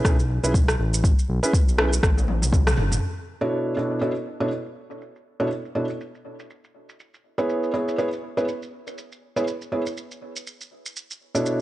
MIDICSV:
0, 0, Header, 1, 4, 480
1, 0, Start_track
1, 0, Tempo, 495868
1, 1007, Time_signature, 4, 2, 24, 8
1, 11240, End_track
2, 0, Start_track
2, 0, Title_t, "Felt piano"
2, 0, Program_c, 0, 0
2, 48, Note_on_c, 0, 61, 88
2, 48, Note_on_c, 0, 64, 84
2, 48, Note_on_c, 0, 68, 84
2, 48, Note_on_c, 0, 71, 96
2, 138, Note_off_c, 0, 61, 0
2, 138, Note_off_c, 0, 64, 0
2, 138, Note_off_c, 0, 68, 0
2, 138, Note_off_c, 0, 71, 0
2, 422, Note_on_c, 0, 61, 87
2, 422, Note_on_c, 0, 64, 82
2, 422, Note_on_c, 0, 68, 80
2, 422, Note_on_c, 0, 71, 99
2, 492, Note_off_c, 0, 61, 0
2, 492, Note_off_c, 0, 64, 0
2, 492, Note_off_c, 0, 68, 0
2, 492, Note_off_c, 0, 71, 0
2, 1382, Note_on_c, 0, 71, 101
2, 1383, Note_on_c, 0, 61, 93
2, 1383, Note_on_c, 0, 64, 82
2, 1383, Note_on_c, 0, 68, 84
2, 1452, Note_off_c, 0, 64, 0
2, 1452, Note_off_c, 0, 68, 0
2, 1452, Note_off_c, 0, 71, 0
2, 1453, Note_off_c, 0, 61, 0
2, 1727, Note_on_c, 0, 61, 78
2, 1727, Note_on_c, 0, 64, 69
2, 1727, Note_on_c, 0, 68, 68
2, 1727, Note_on_c, 0, 71, 79
2, 1818, Note_off_c, 0, 61, 0
2, 1818, Note_off_c, 0, 64, 0
2, 1818, Note_off_c, 0, 68, 0
2, 1818, Note_off_c, 0, 71, 0
2, 3301, Note_on_c, 0, 47, 80
2, 3301, Note_on_c, 0, 69, 75
2, 3302, Note_on_c, 0, 62, 73
2, 3302, Note_on_c, 0, 64, 77
2, 3302, Note_on_c, 0, 66, 73
2, 3302, Note_on_c, 0, 73, 91
2, 3621, Note_off_c, 0, 47, 0
2, 3621, Note_off_c, 0, 62, 0
2, 3621, Note_off_c, 0, 64, 0
2, 3621, Note_off_c, 0, 69, 0
2, 3622, Note_off_c, 0, 66, 0
2, 3622, Note_off_c, 0, 73, 0
2, 3646, Note_on_c, 0, 66, 65
2, 3647, Note_on_c, 0, 47, 69
2, 3647, Note_on_c, 0, 62, 66
2, 3647, Note_on_c, 0, 64, 62
2, 3647, Note_on_c, 0, 69, 66
2, 3647, Note_on_c, 0, 73, 78
2, 3862, Note_off_c, 0, 47, 0
2, 3862, Note_off_c, 0, 62, 0
2, 3862, Note_off_c, 0, 64, 0
2, 3862, Note_off_c, 0, 66, 0
2, 3862, Note_off_c, 0, 69, 0
2, 3862, Note_off_c, 0, 73, 0
2, 3886, Note_on_c, 0, 47, 86
2, 3886, Note_on_c, 0, 64, 78
2, 3886, Note_on_c, 0, 73, 90
2, 3887, Note_on_c, 0, 62, 72
2, 3887, Note_on_c, 0, 66, 73
2, 3887, Note_on_c, 0, 69, 77
2, 3978, Note_off_c, 0, 47, 0
2, 3978, Note_off_c, 0, 62, 0
2, 3978, Note_off_c, 0, 64, 0
2, 3978, Note_off_c, 0, 66, 0
2, 3978, Note_off_c, 0, 69, 0
2, 3978, Note_off_c, 0, 73, 0
2, 4263, Note_on_c, 0, 47, 84
2, 4263, Note_on_c, 0, 62, 77
2, 4263, Note_on_c, 0, 64, 76
2, 4263, Note_on_c, 0, 66, 74
2, 4263, Note_on_c, 0, 69, 73
2, 4263, Note_on_c, 0, 73, 91
2, 4332, Note_off_c, 0, 47, 0
2, 4332, Note_off_c, 0, 66, 0
2, 4333, Note_off_c, 0, 62, 0
2, 4333, Note_off_c, 0, 64, 0
2, 4333, Note_off_c, 0, 69, 0
2, 4333, Note_off_c, 0, 73, 0
2, 5225, Note_on_c, 0, 64, 76
2, 5225, Note_on_c, 0, 73, 93
2, 5226, Note_on_c, 0, 47, 85
2, 5226, Note_on_c, 0, 62, 79
2, 5226, Note_on_c, 0, 66, 77
2, 5226, Note_on_c, 0, 69, 78
2, 5294, Note_off_c, 0, 47, 0
2, 5294, Note_off_c, 0, 62, 0
2, 5294, Note_off_c, 0, 64, 0
2, 5294, Note_off_c, 0, 66, 0
2, 5294, Note_off_c, 0, 69, 0
2, 5294, Note_off_c, 0, 73, 0
2, 5567, Note_on_c, 0, 64, 66
2, 5567, Note_on_c, 0, 66, 64
2, 5567, Note_on_c, 0, 73, 74
2, 5568, Note_on_c, 0, 47, 68
2, 5568, Note_on_c, 0, 62, 62
2, 5568, Note_on_c, 0, 69, 63
2, 5658, Note_off_c, 0, 47, 0
2, 5658, Note_off_c, 0, 64, 0
2, 5658, Note_off_c, 0, 66, 0
2, 5658, Note_off_c, 0, 69, 0
2, 5658, Note_off_c, 0, 73, 0
2, 5659, Note_off_c, 0, 62, 0
2, 7144, Note_on_c, 0, 64, 77
2, 7144, Note_on_c, 0, 68, 77
2, 7145, Note_on_c, 0, 59, 84
2, 7145, Note_on_c, 0, 71, 75
2, 7145, Note_on_c, 0, 73, 93
2, 7463, Note_off_c, 0, 59, 0
2, 7463, Note_off_c, 0, 64, 0
2, 7463, Note_off_c, 0, 68, 0
2, 7463, Note_off_c, 0, 71, 0
2, 7463, Note_off_c, 0, 73, 0
2, 7488, Note_on_c, 0, 59, 73
2, 7489, Note_on_c, 0, 64, 67
2, 7489, Note_on_c, 0, 68, 65
2, 7489, Note_on_c, 0, 71, 67
2, 7489, Note_on_c, 0, 73, 81
2, 7703, Note_off_c, 0, 59, 0
2, 7703, Note_off_c, 0, 64, 0
2, 7703, Note_off_c, 0, 68, 0
2, 7703, Note_off_c, 0, 71, 0
2, 7703, Note_off_c, 0, 73, 0
2, 7728, Note_on_c, 0, 59, 86
2, 7728, Note_on_c, 0, 64, 79
2, 7728, Note_on_c, 0, 68, 79
2, 7728, Note_on_c, 0, 71, 75
2, 7728, Note_on_c, 0, 73, 96
2, 7818, Note_off_c, 0, 71, 0
2, 7819, Note_off_c, 0, 59, 0
2, 7819, Note_off_c, 0, 64, 0
2, 7819, Note_off_c, 0, 68, 0
2, 7819, Note_off_c, 0, 73, 0
2, 8104, Note_on_c, 0, 64, 76
2, 8104, Note_on_c, 0, 68, 73
2, 8104, Note_on_c, 0, 71, 76
2, 8104, Note_on_c, 0, 73, 91
2, 8105, Note_on_c, 0, 59, 85
2, 8173, Note_off_c, 0, 59, 0
2, 8173, Note_off_c, 0, 64, 0
2, 8173, Note_off_c, 0, 68, 0
2, 8173, Note_off_c, 0, 71, 0
2, 8173, Note_off_c, 0, 73, 0
2, 9063, Note_on_c, 0, 59, 85
2, 9063, Note_on_c, 0, 71, 74
2, 9064, Note_on_c, 0, 64, 76
2, 9064, Note_on_c, 0, 68, 77
2, 9064, Note_on_c, 0, 73, 93
2, 9133, Note_off_c, 0, 59, 0
2, 9133, Note_off_c, 0, 64, 0
2, 9133, Note_off_c, 0, 68, 0
2, 9133, Note_off_c, 0, 71, 0
2, 9133, Note_off_c, 0, 73, 0
2, 9408, Note_on_c, 0, 59, 74
2, 9408, Note_on_c, 0, 64, 63
2, 9408, Note_on_c, 0, 68, 64
2, 9408, Note_on_c, 0, 73, 76
2, 9409, Note_on_c, 0, 71, 65
2, 9499, Note_off_c, 0, 59, 0
2, 9499, Note_off_c, 0, 64, 0
2, 9499, Note_off_c, 0, 68, 0
2, 9499, Note_off_c, 0, 71, 0
2, 9499, Note_off_c, 0, 73, 0
2, 10984, Note_on_c, 0, 47, 86
2, 10984, Note_on_c, 0, 62, 78
2, 10984, Note_on_c, 0, 64, 80
2, 10984, Note_on_c, 0, 66, 77
2, 10984, Note_on_c, 0, 69, 78
2, 10984, Note_on_c, 0, 73, 90
2, 11240, Note_off_c, 0, 47, 0
2, 11240, Note_off_c, 0, 62, 0
2, 11240, Note_off_c, 0, 64, 0
2, 11240, Note_off_c, 0, 66, 0
2, 11240, Note_off_c, 0, 69, 0
2, 11240, Note_off_c, 0, 73, 0
2, 11240, End_track
3, 0, Start_track
3, 0, Title_t, "Analog synth bass"
3, 0, Program_c, 1, 38
3, 45, Note_on_c, 1, 35, 94
3, 379, Note_off_c, 1, 35, 0
3, 421, Note_on_c, 1, 35, 82
3, 732, Note_off_c, 1, 35, 0
3, 766, Note_on_c, 1, 33, 92
3, 1099, Note_off_c, 1, 33, 0
3, 1245, Note_on_c, 1, 35, 101
3, 1355, Note_off_c, 1, 35, 0
3, 1622, Note_on_c, 1, 35, 89
3, 1933, Note_off_c, 1, 35, 0
3, 1964, Note_on_c, 1, 33, 84
3, 2343, Note_on_c, 1, 35, 91
3, 2358, Note_off_c, 1, 33, 0
3, 2654, Note_off_c, 1, 35, 0
3, 2687, Note_on_c, 1, 30, 91
3, 2885, Note_off_c, 1, 30, 0
3, 11240, End_track
4, 0, Start_track
4, 0, Title_t, "Drums"
4, 46, Note_on_c, 9, 36, 115
4, 46, Note_on_c, 9, 37, 80
4, 53, Note_on_c, 9, 82, 64
4, 142, Note_off_c, 9, 36, 0
4, 143, Note_off_c, 9, 37, 0
4, 150, Note_off_c, 9, 82, 0
4, 189, Note_on_c, 9, 82, 39
4, 286, Note_off_c, 9, 82, 0
4, 428, Note_on_c, 9, 82, 71
4, 525, Note_off_c, 9, 82, 0
4, 525, Note_on_c, 9, 36, 112
4, 532, Note_on_c, 9, 82, 61
4, 622, Note_off_c, 9, 36, 0
4, 629, Note_off_c, 9, 82, 0
4, 663, Note_on_c, 9, 37, 81
4, 669, Note_on_c, 9, 82, 37
4, 759, Note_off_c, 9, 37, 0
4, 766, Note_off_c, 9, 82, 0
4, 909, Note_on_c, 9, 82, 81
4, 1005, Note_on_c, 9, 36, 112
4, 1006, Note_off_c, 9, 82, 0
4, 1013, Note_on_c, 9, 82, 63
4, 1102, Note_off_c, 9, 36, 0
4, 1110, Note_off_c, 9, 82, 0
4, 1151, Note_on_c, 9, 82, 39
4, 1248, Note_off_c, 9, 82, 0
4, 1390, Note_on_c, 9, 82, 78
4, 1485, Note_on_c, 9, 36, 115
4, 1487, Note_off_c, 9, 82, 0
4, 1495, Note_on_c, 9, 82, 65
4, 1582, Note_off_c, 9, 36, 0
4, 1592, Note_off_c, 9, 82, 0
4, 1632, Note_on_c, 9, 82, 39
4, 1727, Note_on_c, 9, 37, 98
4, 1729, Note_off_c, 9, 82, 0
4, 1824, Note_off_c, 9, 37, 0
4, 1870, Note_on_c, 9, 82, 75
4, 1965, Note_on_c, 9, 36, 113
4, 1967, Note_off_c, 9, 82, 0
4, 1968, Note_on_c, 9, 37, 86
4, 1968, Note_on_c, 9, 48, 61
4, 1975, Note_on_c, 9, 82, 61
4, 2062, Note_off_c, 9, 36, 0
4, 2065, Note_off_c, 9, 37, 0
4, 2065, Note_off_c, 9, 48, 0
4, 2072, Note_off_c, 9, 82, 0
4, 2106, Note_on_c, 9, 48, 57
4, 2112, Note_on_c, 9, 82, 38
4, 2203, Note_off_c, 9, 48, 0
4, 2208, Note_on_c, 9, 48, 75
4, 2209, Note_off_c, 9, 82, 0
4, 2305, Note_off_c, 9, 48, 0
4, 2345, Note_on_c, 9, 47, 65
4, 2352, Note_on_c, 9, 82, 74
4, 2442, Note_off_c, 9, 47, 0
4, 2445, Note_on_c, 9, 36, 116
4, 2449, Note_off_c, 9, 82, 0
4, 2449, Note_on_c, 9, 47, 87
4, 2455, Note_on_c, 9, 82, 63
4, 2542, Note_off_c, 9, 36, 0
4, 2545, Note_off_c, 9, 47, 0
4, 2552, Note_off_c, 9, 82, 0
4, 2585, Note_on_c, 9, 37, 83
4, 2585, Note_on_c, 9, 47, 80
4, 2591, Note_on_c, 9, 82, 38
4, 2682, Note_off_c, 9, 37, 0
4, 2682, Note_off_c, 9, 47, 0
4, 2687, Note_on_c, 9, 45, 101
4, 2688, Note_off_c, 9, 82, 0
4, 2784, Note_off_c, 9, 45, 0
4, 2824, Note_on_c, 9, 45, 91
4, 2831, Note_on_c, 9, 82, 80
4, 2921, Note_off_c, 9, 45, 0
4, 2928, Note_off_c, 9, 82, 0
4, 2935, Note_on_c, 9, 82, 59
4, 3032, Note_off_c, 9, 82, 0
4, 3071, Note_on_c, 9, 82, 37
4, 3168, Note_off_c, 9, 82, 0
4, 3309, Note_on_c, 9, 82, 71
4, 3406, Note_off_c, 9, 82, 0
4, 3413, Note_on_c, 9, 82, 62
4, 3510, Note_off_c, 9, 82, 0
4, 3550, Note_on_c, 9, 82, 37
4, 3646, Note_off_c, 9, 82, 0
4, 3789, Note_on_c, 9, 82, 72
4, 3886, Note_off_c, 9, 82, 0
4, 3892, Note_on_c, 9, 82, 63
4, 3989, Note_off_c, 9, 82, 0
4, 4030, Note_on_c, 9, 82, 37
4, 4127, Note_off_c, 9, 82, 0
4, 4270, Note_on_c, 9, 82, 72
4, 4367, Note_off_c, 9, 82, 0
4, 4374, Note_on_c, 9, 82, 62
4, 4470, Note_off_c, 9, 82, 0
4, 4511, Note_on_c, 9, 82, 39
4, 4607, Note_off_c, 9, 82, 0
4, 4751, Note_on_c, 9, 82, 74
4, 4848, Note_off_c, 9, 82, 0
4, 4855, Note_on_c, 9, 82, 64
4, 4952, Note_off_c, 9, 82, 0
4, 4992, Note_on_c, 9, 82, 37
4, 5089, Note_off_c, 9, 82, 0
4, 5231, Note_on_c, 9, 82, 77
4, 5327, Note_off_c, 9, 82, 0
4, 5333, Note_on_c, 9, 82, 62
4, 5430, Note_off_c, 9, 82, 0
4, 5469, Note_on_c, 9, 82, 39
4, 5566, Note_off_c, 9, 82, 0
4, 5709, Note_on_c, 9, 82, 77
4, 5806, Note_off_c, 9, 82, 0
4, 5814, Note_on_c, 9, 82, 65
4, 5911, Note_off_c, 9, 82, 0
4, 5951, Note_on_c, 9, 82, 38
4, 6048, Note_off_c, 9, 82, 0
4, 6190, Note_on_c, 9, 82, 76
4, 6287, Note_off_c, 9, 82, 0
4, 6294, Note_on_c, 9, 82, 63
4, 6391, Note_off_c, 9, 82, 0
4, 6431, Note_on_c, 9, 82, 37
4, 6527, Note_off_c, 9, 82, 0
4, 6671, Note_on_c, 9, 82, 82
4, 6768, Note_off_c, 9, 82, 0
4, 6774, Note_on_c, 9, 82, 61
4, 6871, Note_off_c, 9, 82, 0
4, 6911, Note_on_c, 9, 82, 38
4, 7008, Note_off_c, 9, 82, 0
4, 7150, Note_on_c, 9, 82, 75
4, 7247, Note_off_c, 9, 82, 0
4, 7255, Note_on_c, 9, 82, 65
4, 7351, Note_off_c, 9, 82, 0
4, 7390, Note_on_c, 9, 82, 40
4, 7487, Note_off_c, 9, 82, 0
4, 7631, Note_on_c, 9, 82, 81
4, 7728, Note_off_c, 9, 82, 0
4, 7734, Note_on_c, 9, 82, 65
4, 7831, Note_off_c, 9, 82, 0
4, 7870, Note_on_c, 9, 82, 39
4, 7967, Note_off_c, 9, 82, 0
4, 8110, Note_on_c, 9, 82, 74
4, 8207, Note_off_c, 9, 82, 0
4, 8212, Note_on_c, 9, 82, 64
4, 8309, Note_off_c, 9, 82, 0
4, 8350, Note_on_c, 9, 82, 38
4, 8447, Note_off_c, 9, 82, 0
4, 8589, Note_on_c, 9, 82, 81
4, 8686, Note_off_c, 9, 82, 0
4, 8692, Note_on_c, 9, 82, 62
4, 8789, Note_off_c, 9, 82, 0
4, 8829, Note_on_c, 9, 82, 39
4, 8926, Note_off_c, 9, 82, 0
4, 9068, Note_on_c, 9, 82, 76
4, 9165, Note_off_c, 9, 82, 0
4, 9172, Note_on_c, 9, 82, 61
4, 9269, Note_off_c, 9, 82, 0
4, 9309, Note_on_c, 9, 82, 38
4, 9406, Note_off_c, 9, 82, 0
4, 9550, Note_on_c, 9, 82, 76
4, 9646, Note_off_c, 9, 82, 0
4, 9654, Note_on_c, 9, 82, 67
4, 9751, Note_off_c, 9, 82, 0
4, 9790, Note_on_c, 9, 82, 40
4, 9887, Note_off_c, 9, 82, 0
4, 10030, Note_on_c, 9, 82, 73
4, 10127, Note_off_c, 9, 82, 0
4, 10134, Note_on_c, 9, 82, 65
4, 10231, Note_off_c, 9, 82, 0
4, 10270, Note_on_c, 9, 82, 39
4, 10367, Note_off_c, 9, 82, 0
4, 10511, Note_on_c, 9, 82, 82
4, 10607, Note_off_c, 9, 82, 0
4, 10613, Note_on_c, 9, 82, 60
4, 10710, Note_off_c, 9, 82, 0
4, 10750, Note_on_c, 9, 82, 37
4, 10847, Note_off_c, 9, 82, 0
4, 10989, Note_on_c, 9, 82, 78
4, 11086, Note_off_c, 9, 82, 0
4, 11093, Note_on_c, 9, 82, 64
4, 11189, Note_off_c, 9, 82, 0
4, 11240, End_track
0, 0, End_of_file